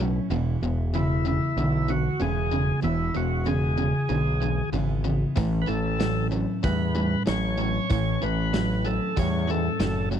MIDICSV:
0, 0, Header, 1, 6, 480
1, 0, Start_track
1, 0, Key_signature, 4, "major"
1, 0, Tempo, 633580
1, 232, Time_signature, 4, 2, 24, 8
1, 7725, End_track
2, 0, Start_track
2, 0, Title_t, "Tonewheel organ"
2, 0, Program_c, 0, 16
2, 720, Note_on_c, 0, 64, 78
2, 960, Note_off_c, 0, 64, 0
2, 970, Note_on_c, 0, 64, 81
2, 1441, Note_on_c, 0, 66, 87
2, 1453, Note_off_c, 0, 64, 0
2, 1678, Note_on_c, 0, 68, 93
2, 1681, Note_off_c, 0, 66, 0
2, 2122, Note_off_c, 0, 68, 0
2, 2153, Note_on_c, 0, 64, 86
2, 2397, Note_off_c, 0, 64, 0
2, 2399, Note_on_c, 0, 66, 81
2, 2632, Note_on_c, 0, 68, 83
2, 2640, Note_off_c, 0, 66, 0
2, 3559, Note_off_c, 0, 68, 0
2, 4255, Note_on_c, 0, 71, 68
2, 4301, Note_on_c, 0, 69, 97
2, 4308, Note_off_c, 0, 71, 0
2, 4754, Note_off_c, 0, 69, 0
2, 5030, Note_on_c, 0, 71, 88
2, 5479, Note_off_c, 0, 71, 0
2, 5518, Note_on_c, 0, 73, 91
2, 5993, Note_off_c, 0, 73, 0
2, 6002, Note_on_c, 0, 73, 101
2, 6237, Note_on_c, 0, 71, 106
2, 6242, Note_off_c, 0, 73, 0
2, 6712, Note_on_c, 0, 69, 74
2, 6727, Note_off_c, 0, 71, 0
2, 6957, Note_off_c, 0, 69, 0
2, 6963, Note_on_c, 0, 73, 88
2, 7200, Note_on_c, 0, 69, 73
2, 7203, Note_off_c, 0, 73, 0
2, 7644, Note_off_c, 0, 69, 0
2, 7725, End_track
3, 0, Start_track
3, 0, Title_t, "Steel-string acoustic guitar"
3, 0, Program_c, 1, 25
3, 0, Note_on_c, 1, 64, 51
3, 7, Note_on_c, 1, 61, 56
3, 20, Note_on_c, 1, 57, 47
3, 227, Note_on_c, 1, 40, 73
3, 232, Note_off_c, 1, 64, 0
3, 232, Note_on_c, 1, 47, 86
3, 235, Note_off_c, 1, 57, 0
3, 236, Note_on_c, 1, 52, 83
3, 238, Note_on_c, 1, 56, 87
3, 239, Note_off_c, 1, 61, 0
3, 246, Note_on_c, 1, 59, 81
3, 246, Note_on_c, 1, 64, 81
3, 452, Note_off_c, 1, 64, 0
3, 462, Note_on_c, 1, 64, 58
3, 465, Note_off_c, 1, 59, 0
3, 469, Note_off_c, 1, 40, 0
3, 470, Note_off_c, 1, 56, 0
3, 471, Note_off_c, 1, 47, 0
3, 473, Note_off_c, 1, 52, 0
3, 474, Note_on_c, 1, 59, 49
3, 479, Note_on_c, 1, 56, 47
3, 488, Note_on_c, 1, 52, 44
3, 701, Note_off_c, 1, 52, 0
3, 705, Note_on_c, 1, 40, 65
3, 706, Note_off_c, 1, 56, 0
3, 706, Note_off_c, 1, 59, 0
3, 706, Note_off_c, 1, 64, 0
3, 708, Note_on_c, 1, 47, 74
3, 710, Note_on_c, 1, 52, 74
3, 715, Note_on_c, 1, 56, 69
3, 715, Note_on_c, 1, 59, 75
3, 722, Note_on_c, 1, 64, 85
3, 939, Note_off_c, 1, 64, 0
3, 947, Note_off_c, 1, 40, 0
3, 947, Note_off_c, 1, 59, 0
3, 948, Note_off_c, 1, 47, 0
3, 949, Note_off_c, 1, 52, 0
3, 949, Note_on_c, 1, 64, 49
3, 952, Note_off_c, 1, 56, 0
3, 956, Note_on_c, 1, 59, 46
3, 966, Note_on_c, 1, 56, 47
3, 973, Note_on_c, 1, 52, 41
3, 1179, Note_off_c, 1, 52, 0
3, 1188, Note_on_c, 1, 52, 54
3, 1189, Note_off_c, 1, 64, 0
3, 1191, Note_off_c, 1, 56, 0
3, 1192, Note_off_c, 1, 59, 0
3, 1201, Note_on_c, 1, 56, 55
3, 1206, Note_on_c, 1, 59, 57
3, 1215, Note_on_c, 1, 64, 59
3, 1669, Note_on_c, 1, 40, 69
3, 1674, Note_off_c, 1, 56, 0
3, 1677, Note_off_c, 1, 52, 0
3, 1677, Note_off_c, 1, 59, 0
3, 1677, Note_on_c, 1, 47, 75
3, 1680, Note_on_c, 1, 52, 68
3, 1682, Note_on_c, 1, 56, 70
3, 1685, Note_off_c, 1, 64, 0
3, 1686, Note_on_c, 1, 59, 74
3, 1688, Note_on_c, 1, 64, 77
3, 1894, Note_off_c, 1, 64, 0
3, 1903, Note_off_c, 1, 59, 0
3, 1903, Note_on_c, 1, 64, 54
3, 1908, Note_off_c, 1, 40, 0
3, 1911, Note_off_c, 1, 56, 0
3, 1912, Note_off_c, 1, 47, 0
3, 1912, Note_on_c, 1, 59, 43
3, 1914, Note_off_c, 1, 52, 0
3, 1920, Note_on_c, 1, 56, 45
3, 1928, Note_on_c, 1, 52, 39
3, 2129, Note_off_c, 1, 52, 0
3, 2129, Note_off_c, 1, 56, 0
3, 2129, Note_on_c, 1, 40, 75
3, 2134, Note_on_c, 1, 47, 68
3, 2135, Note_off_c, 1, 64, 0
3, 2136, Note_off_c, 1, 59, 0
3, 2138, Note_on_c, 1, 52, 72
3, 2139, Note_on_c, 1, 56, 67
3, 2144, Note_on_c, 1, 64, 82
3, 2145, Note_on_c, 1, 59, 79
3, 2360, Note_off_c, 1, 64, 0
3, 2369, Note_on_c, 1, 64, 45
3, 2370, Note_off_c, 1, 59, 0
3, 2378, Note_off_c, 1, 40, 0
3, 2379, Note_on_c, 1, 59, 44
3, 2380, Note_off_c, 1, 56, 0
3, 2381, Note_off_c, 1, 47, 0
3, 2383, Note_off_c, 1, 52, 0
3, 2389, Note_on_c, 1, 56, 38
3, 2396, Note_on_c, 1, 52, 35
3, 2604, Note_off_c, 1, 52, 0
3, 2604, Note_on_c, 1, 40, 64
3, 2609, Note_off_c, 1, 56, 0
3, 2611, Note_off_c, 1, 59, 0
3, 2612, Note_on_c, 1, 47, 73
3, 2613, Note_on_c, 1, 52, 65
3, 2616, Note_off_c, 1, 64, 0
3, 2618, Note_on_c, 1, 56, 69
3, 2620, Note_on_c, 1, 59, 73
3, 2625, Note_on_c, 1, 64, 78
3, 2837, Note_off_c, 1, 64, 0
3, 2846, Note_on_c, 1, 64, 49
3, 2852, Note_off_c, 1, 59, 0
3, 2855, Note_off_c, 1, 40, 0
3, 2857, Note_off_c, 1, 56, 0
3, 2860, Note_off_c, 1, 47, 0
3, 2860, Note_off_c, 1, 52, 0
3, 2861, Note_on_c, 1, 59, 46
3, 2866, Note_on_c, 1, 56, 46
3, 2878, Note_on_c, 1, 52, 43
3, 3082, Note_off_c, 1, 52, 0
3, 3091, Note_on_c, 1, 52, 57
3, 3093, Note_off_c, 1, 56, 0
3, 3097, Note_off_c, 1, 64, 0
3, 3101, Note_off_c, 1, 59, 0
3, 3102, Note_on_c, 1, 56, 51
3, 3110, Note_on_c, 1, 59, 56
3, 3120, Note_on_c, 1, 64, 56
3, 3577, Note_off_c, 1, 56, 0
3, 3578, Note_on_c, 1, 40, 68
3, 3582, Note_off_c, 1, 52, 0
3, 3583, Note_off_c, 1, 59, 0
3, 3583, Note_on_c, 1, 47, 68
3, 3585, Note_on_c, 1, 52, 76
3, 3586, Note_on_c, 1, 56, 74
3, 3591, Note_off_c, 1, 64, 0
3, 3592, Note_on_c, 1, 59, 89
3, 3594, Note_on_c, 1, 64, 76
3, 3807, Note_off_c, 1, 64, 0
3, 3816, Note_on_c, 1, 64, 52
3, 3818, Note_off_c, 1, 59, 0
3, 3823, Note_off_c, 1, 40, 0
3, 3825, Note_off_c, 1, 47, 0
3, 3826, Note_off_c, 1, 52, 0
3, 3827, Note_off_c, 1, 56, 0
3, 3827, Note_on_c, 1, 59, 51
3, 3838, Note_on_c, 1, 56, 46
3, 3844, Note_on_c, 1, 52, 48
3, 4050, Note_off_c, 1, 52, 0
3, 4055, Note_on_c, 1, 45, 70
3, 4058, Note_off_c, 1, 56, 0
3, 4059, Note_on_c, 1, 52, 75
3, 4060, Note_off_c, 1, 64, 0
3, 4061, Note_on_c, 1, 57, 83
3, 4063, Note_off_c, 1, 59, 0
3, 4066, Note_on_c, 1, 61, 79
3, 4069, Note_on_c, 1, 64, 90
3, 4283, Note_off_c, 1, 64, 0
3, 4292, Note_on_c, 1, 64, 48
3, 4295, Note_off_c, 1, 61, 0
3, 4301, Note_off_c, 1, 45, 0
3, 4303, Note_off_c, 1, 52, 0
3, 4304, Note_off_c, 1, 57, 0
3, 4304, Note_on_c, 1, 61, 45
3, 4318, Note_on_c, 1, 57, 40
3, 4532, Note_off_c, 1, 57, 0
3, 4534, Note_on_c, 1, 45, 63
3, 4537, Note_off_c, 1, 61, 0
3, 4539, Note_on_c, 1, 52, 73
3, 4540, Note_off_c, 1, 64, 0
3, 4541, Note_on_c, 1, 57, 74
3, 4546, Note_on_c, 1, 61, 68
3, 4552, Note_on_c, 1, 64, 76
3, 4759, Note_off_c, 1, 64, 0
3, 4768, Note_on_c, 1, 64, 44
3, 4769, Note_off_c, 1, 61, 0
3, 4778, Note_on_c, 1, 61, 47
3, 4781, Note_off_c, 1, 45, 0
3, 4783, Note_off_c, 1, 52, 0
3, 4784, Note_off_c, 1, 57, 0
3, 4794, Note_on_c, 1, 57, 41
3, 5015, Note_off_c, 1, 57, 0
3, 5015, Note_on_c, 1, 52, 49
3, 5018, Note_off_c, 1, 64, 0
3, 5023, Note_off_c, 1, 61, 0
3, 5024, Note_on_c, 1, 57, 54
3, 5036, Note_on_c, 1, 61, 56
3, 5039, Note_on_c, 1, 64, 57
3, 5502, Note_on_c, 1, 45, 68
3, 5503, Note_off_c, 1, 57, 0
3, 5506, Note_off_c, 1, 52, 0
3, 5509, Note_on_c, 1, 52, 72
3, 5512, Note_off_c, 1, 61, 0
3, 5512, Note_on_c, 1, 57, 64
3, 5516, Note_off_c, 1, 64, 0
3, 5519, Note_on_c, 1, 64, 73
3, 5521, Note_on_c, 1, 61, 71
3, 5729, Note_off_c, 1, 64, 0
3, 5738, Note_on_c, 1, 64, 46
3, 5745, Note_off_c, 1, 45, 0
3, 5745, Note_off_c, 1, 61, 0
3, 5749, Note_off_c, 1, 52, 0
3, 5750, Note_off_c, 1, 57, 0
3, 5754, Note_on_c, 1, 61, 50
3, 5769, Note_on_c, 1, 57, 36
3, 5983, Note_off_c, 1, 64, 0
3, 5989, Note_on_c, 1, 45, 68
3, 5990, Note_off_c, 1, 57, 0
3, 5991, Note_off_c, 1, 61, 0
3, 5995, Note_on_c, 1, 52, 69
3, 5999, Note_on_c, 1, 57, 70
3, 6002, Note_on_c, 1, 61, 77
3, 6004, Note_on_c, 1, 64, 74
3, 6215, Note_off_c, 1, 64, 0
3, 6224, Note_on_c, 1, 64, 46
3, 6229, Note_off_c, 1, 45, 0
3, 6231, Note_off_c, 1, 52, 0
3, 6231, Note_off_c, 1, 61, 0
3, 6234, Note_off_c, 1, 57, 0
3, 6240, Note_on_c, 1, 61, 45
3, 6250, Note_on_c, 1, 57, 38
3, 6462, Note_off_c, 1, 57, 0
3, 6465, Note_on_c, 1, 45, 66
3, 6465, Note_on_c, 1, 52, 68
3, 6466, Note_off_c, 1, 61, 0
3, 6466, Note_off_c, 1, 64, 0
3, 6471, Note_on_c, 1, 57, 73
3, 6475, Note_on_c, 1, 61, 74
3, 6482, Note_on_c, 1, 64, 72
3, 6697, Note_off_c, 1, 64, 0
3, 6706, Note_on_c, 1, 64, 51
3, 6707, Note_off_c, 1, 45, 0
3, 6707, Note_off_c, 1, 52, 0
3, 6710, Note_off_c, 1, 57, 0
3, 6712, Note_off_c, 1, 61, 0
3, 6722, Note_on_c, 1, 61, 45
3, 6734, Note_on_c, 1, 57, 42
3, 6947, Note_off_c, 1, 64, 0
3, 6953, Note_on_c, 1, 52, 53
3, 6954, Note_off_c, 1, 57, 0
3, 6955, Note_off_c, 1, 61, 0
3, 6963, Note_on_c, 1, 57, 55
3, 6973, Note_on_c, 1, 61, 62
3, 6980, Note_on_c, 1, 64, 62
3, 7423, Note_off_c, 1, 52, 0
3, 7425, Note_off_c, 1, 57, 0
3, 7427, Note_on_c, 1, 45, 68
3, 7432, Note_off_c, 1, 61, 0
3, 7432, Note_on_c, 1, 52, 62
3, 7434, Note_on_c, 1, 57, 78
3, 7435, Note_off_c, 1, 64, 0
3, 7441, Note_on_c, 1, 61, 76
3, 7444, Note_on_c, 1, 64, 77
3, 7655, Note_off_c, 1, 64, 0
3, 7664, Note_on_c, 1, 64, 49
3, 7668, Note_off_c, 1, 45, 0
3, 7671, Note_off_c, 1, 52, 0
3, 7671, Note_off_c, 1, 61, 0
3, 7672, Note_off_c, 1, 57, 0
3, 7680, Note_on_c, 1, 61, 44
3, 7687, Note_on_c, 1, 57, 37
3, 7725, Note_off_c, 1, 57, 0
3, 7725, Note_off_c, 1, 61, 0
3, 7725, Note_off_c, 1, 64, 0
3, 7725, End_track
4, 0, Start_track
4, 0, Title_t, "Distorted electric guitar"
4, 0, Program_c, 2, 30
4, 0, Note_on_c, 2, 45, 64
4, 0, Note_on_c, 2, 54, 75
4, 207, Note_off_c, 2, 45, 0
4, 211, Note_off_c, 2, 54, 0
4, 230, Note_on_c, 2, 40, 75
4, 237, Note_on_c, 2, 47, 87
4, 446, Note_off_c, 2, 40, 0
4, 450, Note_off_c, 2, 47, 0
4, 476, Note_on_c, 2, 40, 60
4, 480, Note_on_c, 2, 47, 69
4, 689, Note_off_c, 2, 40, 0
4, 691, Note_off_c, 2, 47, 0
4, 710, Note_on_c, 2, 40, 69
4, 713, Note_on_c, 2, 49, 89
4, 926, Note_off_c, 2, 40, 0
4, 927, Note_off_c, 2, 49, 0
4, 947, Note_on_c, 2, 40, 69
4, 951, Note_on_c, 2, 49, 80
4, 1164, Note_off_c, 2, 40, 0
4, 1166, Note_off_c, 2, 49, 0
4, 1195, Note_on_c, 2, 40, 78
4, 1198, Note_on_c, 2, 50, 81
4, 1408, Note_off_c, 2, 40, 0
4, 1409, Note_off_c, 2, 50, 0
4, 1426, Note_on_c, 2, 40, 68
4, 1428, Note_on_c, 2, 50, 69
4, 1643, Note_off_c, 2, 40, 0
4, 1644, Note_off_c, 2, 50, 0
4, 1664, Note_on_c, 2, 40, 72
4, 1670, Note_on_c, 2, 49, 81
4, 1882, Note_off_c, 2, 40, 0
4, 1885, Note_off_c, 2, 49, 0
4, 1905, Note_on_c, 2, 40, 66
4, 1909, Note_on_c, 2, 49, 73
4, 2122, Note_off_c, 2, 40, 0
4, 2124, Note_off_c, 2, 49, 0
4, 2140, Note_on_c, 2, 40, 72
4, 2143, Note_on_c, 2, 47, 71
4, 2360, Note_off_c, 2, 40, 0
4, 2361, Note_off_c, 2, 47, 0
4, 2382, Note_on_c, 2, 40, 62
4, 2385, Note_on_c, 2, 47, 69
4, 2601, Note_off_c, 2, 40, 0
4, 2602, Note_off_c, 2, 47, 0
4, 2622, Note_on_c, 2, 40, 78
4, 2624, Note_on_c, 2, 49, 78
4, 2841, Note_off_c, 2, 40, 0
4, 2842, Note_off_c, 2, 49, 0
4, 2861, Note_on_c, 2, 40, 64
4, 2862, Note_on_c, 2, 49, 75
4, 3080, Note_off_c, 2, 40, 0
4, 3081, Note_off_c, 2, 49, 0
4, 3099, Note_on_c, 2, 40, 79
4, 3101, Note_on_c, 2, 50, 76
4, 3319, Note_off_c, 2, 40, 0
4, 3320, Note_off_c, 2, 50, 0
4, 3346, Note_on_c, 2, 40, 66
4, 3352, Note_on_c, 2, 50, 68
4, 3563, Note_off_c, 2, 40, 0
4, 3566, Note_off_c, 2, 50, 0
4, 3583, Note_on_c, 2, 40, 72
4, 3589, Note_on_c, 2, 49, 75
4, 3801, Note_off_c, 2, 40, 0
4, 3804, Note_off_c, 2, 49, 0
4, 3818, Note_on_c, 2, 40, 65
4, 3823, Note_on_c, 2, 49, 67
4, 4039, Note_off_c, 2, 40, 0
4, 4041, Note_off_c, 2, 49, 0
4, 4058, Note_on_c, 2, 45, 72
4, 4061, Note_on_c, 2, 52, 85
4, 4279, Note_off_c, 2, 45, 0
4, 4280, Note_off_c, 2, 52, 0
4, 4291, Note_on_c, 2, 45, 64
4, 4299, Note_on_c, 2, 52, 72
4, 4515, Note_off_c, 2, 45, 0
4, 4520, Note_off_c, 2, 52, 0
4, 4543, Note_on_c, 2, 45, 78
4, 4547, Note_on_c, 2, 54, 81
4, 4761, Note_off_c, 2, 45, 0
4, 4763, Note_off_c, 2, 54, 0
4, 4780, Note_on_c, 2, 45, 59
4, 4787, Note_on_c, 2, 54, 71
4, 5000, Note_off_c, 2, 45, 0
4, 5003, Note_off_c, 2, 54, 0
4, 5023, Note_on_c, 2, 45, 67
4, 5024, Note_on_c, 2, 55, 82
4, 5241, Note_off_c, 2, 45, 0
4, 5242, Note_off_c, 2, 55, 0
4, 5263, Note_on_c, 2, 45, 72
4, 5264, Note_on_c, 2, 55, 66
4, 5482, Note_off_c, 2, 45, 0
4, 5482, Note_off_c, 2, 55, 0
4, 5498, Note_on_c, 2, 45, 68
4, 5506, Note_on_c, 2, 54, 78
4, 5719, Note_off_c, 2, 45, 0
4, 5723, Note_off_c, 2, 54, 0
4, 5739, Note_on_c, 2, 45, 69
4, 5740, Note_on_c, 2, 54, 72
4, 5959, Note_off_c, 2, 45, 0
4, 5960, Note_off_c, 2, 54, 0
4, 5983, Note_on_c, 2, 45, 73
4, 5984, Note_on_c, 2, 52, 81
4, 6201, Note_off_c, 2, 45, 0
4, 6202, Note_off_c, 2, 52, 0
4, 6226, Note_on_c, 2, 45, 72
4, 6232, Note_on_c, 2, 52, 74
4, 6443, Note_off_c, 2, 45, 0
4, 6446, Note_off_c, 2, 52, 0
4, 6467, Note_on_c, 2, 45, 72
4, 6475, Note_on_c, 2, 54, 74
4, 6684, Note_off_c, 2, 45, 0
4, 6688, Note_off_c, 2, 54, 0
4, 6702, Note_on_c, 2, 45, 64
4, 6705, Note_on_c, 2, 54, 71
4, 6921, Note_off_c, 2, 45, 0
4, 6923, Note_off_c, 2, 54, 0
4, 6945, Note_on_c, 2, 45, 75
4, 6950, Note_on_c, 2, 55, 88
4, 7163, Note_off_c, 2, 45, 0
4, 7165, Note_off_c, 2, 55, 0
4, 7189, Note_on_c, 2, 45, 65
4, 7198, Note_on_c, 2, 55, 77
4, 7405, Note_off_c, 2, 45, 0
4, 7409, Note_off_c, 2, 55, 0
4, 7423, Note_on_c, 2, 45, 68
4, 7423, Note_on_c, 2, 54, 75
4, 7642, Note_off_c, 2, 45, 0
4, 7642, Note_off_c, 2, 54, 0
4, 7665, Note_on_c, 2, 45, 70
4, 7668, Note_on_c, 2, 54, 72
4, 7725, Note_off_c, 2, 45, 0
4, 7725, Note_off_c, 2, 54, 0
4, 7725, End_track
5, 0, Start_track
5, 0, Title_t, "Picked electric bass"
5, 0, Program_c, 3, 34
5, 0, Note_on_c, 3, 35, 84
5, 140, Note_off_c, 3, 35, 0
5, 228, Note_on_c, 3, 28, 92
5, 422, Note_off_c, 3, 28, 0
5, 470, Note_on_c, 3, 28, 90
5, 1047, Note_off_c, 3, 28, 0
5, 1187, Note_on_c, 3, 35, 85
5, 1572, Note_off_c, 3, 35, 0
5, 1672, Note_on_c, 3, 28, 86
5, 2056, Note_off_c, 3, 28, 0
5, 2149, Note_on_c, 3, 28, 93
5, 2341, Note_off_c, 3, 28, 0
5, 2392, Note_on_c, 3, 28, 82
5, 2968, Note_off_c, 3, 28, 0
5, 3106, Note_on_c, 3, 35, 88
5, 3492, Note_off_c, 3, 35, 0
5, 3582, Note_on_c, 3, 32, 83
5, 3969, Note_off_c, 3, 32, 0
5, 4069, Note_on_c, 3, 33, 97
5, 4261, Note_off_c, 3, 33, 0
5, 4306, Note_on_c, 3, 33, 88
5, 4884, Note_off_c, 3, 33, 0
5, 5030, Note_on_c, 3, 40, 82
5, 5414, Note_off_c, 3, 40, 0
5, 5511, Note_on_c, 3, 33, 82
5, 5895, Note_off_c, 3, 33, 0
5, 5989, Note_on_c, 3, 33, 91
5, 6181, Note_off_c, 3, 33, 0
5, 6233, Note_on_c, 3, 33, 80
5, 6809, Note_off_c, 3, 33, 0
5, 6949, Note_on_c, 3, 40, 83
5, 7334, Note_off_c, 3, 40, 0
5, 7421, Note_on_c, 3, 30, 86
5, 7725, Note_off_c, 3, 30, 0
5, 7725, End_track
6, 0, Start_track
6, 0, Title_t, "Drums"
6, 4069, Note_on_c, 9, 36, 96
6, 4069, Note_on_c, 9, 46, 41
6, 4144, Note_off_c, 9, 36, 0
6, 4145, Note_off_c, 9, 46, 0
6, 4549, Note_on_c, 9, 46, 45
6, 4550, Note_on_c, 9, 38, 100
6, 4625, Note_off_c, 9, 46, 0
6, 4626, Note_off_c, 9, 38, 0
6, 5029, Note_on_c, 9, 46, 44
6, 5030, Note_on_c, 9, 36, 101
6, 5105, Note_off_c, 9, 46, 0
6, 5106, Note_off_c, 9, 36, 0
6, 5509, Note_on_c, 9, 38, 105
6, 5509, Note_on_c, 9, 46, 50
6, 5584, Note_off_c, 9, 46, 0
6, 5585, Note_off_c, 9, 38, 0
6, 5987, Note_on_c, 9, 46, 52
6, 5989, Note_on_c, 9, 36, 100
6, 6062, Note_off_c, 9, 46, 0
6, 6065, Note_off_c, 9, 36, 0
6, 6469, Note_on_c, 9, 46, 50
6, 6470, Note_on_c, 9, 38, 100
6, 6545, Note_off_c, 9, 46, 0
6, 6546, Note_off_c, 9, 38, 0
6, 6948, Note_on_c, 9, 46, 45
6, 6949, Note_on_c, 9, 36, 93
6, 7024, Note_off_c, 9, 36, 0
6, 7024, Note_off_c, 9, 46, 0
6, 7426, Note_on_c, 9, 46, 44
6, 7427, Note_on_c, 9, 38, 98
6, 7502, Note_off_c, 9, 46, 0
6, 7503, Note_off_c, 9, 38, 0
6, 7725, End_track
0, 0, End_of_file